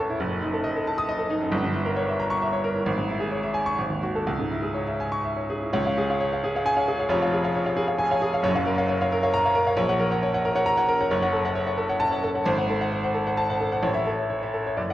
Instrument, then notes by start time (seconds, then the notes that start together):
grand piano
Already playing: A1 E2 E4 C#5 E5 A5 C#6
0.00 A4
0.09 E4
0.20 F#1
0.31 F#2
0.42 D#4
0.53 A4
0.64 D#5
0.76 A4
0.87 A5
0.98 D#6
1.09 D#5
1.19 A4
1.30 D#4
1.40 F#2
1.52 G1
1.63 G2
1.74 E4
1.85 A#4
1.96 C#5
2.09 E5
2.20 A#5
2.30 C#6
2.42 E5
2.53 C#5
2.64 A#4
2.75 E4
2.86 G#1
2.98 G#2
3.09 E4
3.20 G#4
3.31 C#5
3.43 E5
3.54 G#5
3.66 C#6
3.78 G#1
3.90 D#2
4.03 F#4
4.16 A4
4.27 C#2
4.39 G#2
4.51 E4
4.62 G#4
4.74 C#5
4.87 E5
5.00 G#5
5.12 C#6
5.25 E5
5.37 C#5
5.50 G#4
5.62 E4
5.73 C#2 C#5
5.86 C#5 F5
5.97 G#4
6.10 C#5 F5
6.20 C#5
6.32 C#5 F5
6.44 G#4
6.55 C#5 F5
6.65 G#5
6.76 C#5 F5
6.88 G#4
6.99 C#5 F5
7.09 F1 F2 C#5
7.22 C#5 F5
7.32 G#4
7.44 C#5 F5
7.55 C#5
7.66 C#5 F5
7.76 G#4
7.87 C#5 F5
7.98 G#5
8.11 C#5 F5
8.22 G#4
8.33 C#5 F5
8.42 F#1 F#2 C#5
8.54 C#5 F5
8.66 A#4
8.77 C#5 F5
8.89 C#5
9.01 C#5 F5
9.12 A#4
9.23 C#5 F5
9.34 A#5
9.45 C#5 F5
9.55 A#4
9.67 C#5 F5
9.77 A#1 C#5
9.88 C#5 F#5
9.99 A#4
10.11 C#5 F#5
10.23 C#5
10.34 C#5 F#5
10.45 A#4
10.55 C#5 F#5
10.66 A#5
10.77 C#5 F#5
10.89 A#4
11.01 C#5 F#5
11.11 F#1 C#5
11.22 C#5 F#5
11.33 A4
11.45 C#5 F#5
11.55 C#5
11.66 C#5 F#5
11.78 A4
11.89 C#5 F#5
12.00 A5
12.12 C#5 F#5
12.24 A4
12.35 C#5 F#5
12.46 G#1 C5
12.58 C5 F#5
12.70 A4
12.81 C5 F#5
12.92 C5
13.04 C5 F#5
13.15 A4
13.27 C5 F#5
13.37 A5
13.50 C5 F#5
13.61 A4
13.72 C5 F#5
13.83 A1 C#5
13.94 C#5 E5
14.06 A4
14.18 C#5 E5
14.30 C#5
14.42 C#5 E5
14.54 A4
14.66 C#5 E5
14.77 F#1 D5
14.90 D5 F#5